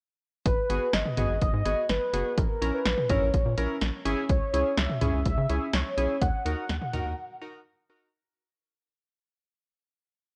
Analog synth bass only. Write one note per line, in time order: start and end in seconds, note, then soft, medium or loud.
0.46 0.55 G#1 loud
0.70 0.79 G#1 medium
0.94 1.03 G#1 loud
1.18 1.27 G#1 medium
1.30 1.39 G#1 medium
1.42 1.51 G#1 loud
1.54 1.63 G#2 loud
1.66 1.75 G#1 loud
1.90 1.99 G#1 medium
2.14 2.23 F#1 medium
2.38 2.47 A#1 loud
2.62 2.71 A#1 loud
2.86 2.95 A#1 loud
3.10 3.19 A#1 loud
3.22 3.31 A#1 medium
3.34 3.43 A#1 loud
3.46 3.55 A#2 medium
3.58 3.67 A#1 loud
3.82 3.91 A#1 medium
4.06 4.15 G#1 medium
4.30 4.39 C#2 loud
4.54 4.63 C#2 medium
4.78 4.87 C#2 loud
5.02 5.11 C#2 loud
5.14 5.23 C#2 medium
5.26 5.35 C#2 loud
5.38 5.47 C#3 medium
5.50 5.59 C#2 loud
5.74 5.83 C#2 medium
5.98 6.07 B1 medium
6.22 6.31 D#2 loud
6.46 6.55 D#2 medium
6.70 6.79 D#2 loud
6.94 7.03 D#2 medium
7.06 7.15 D#2 loud